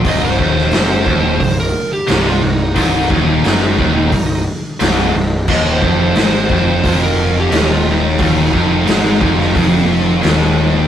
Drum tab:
CC |----------------|----------------|x---------------|----------------|
HH |o---o---o---o---|o---o---o---o---|----o---o---o---|o---o---o---o---|
SD |---oo-------o---|----o-------o---|----o-------o---|----o--o----o---|
BD |o-o---o-o-------|o-o---o-o-------|o-o---o-o-------|o-o---o-o-------|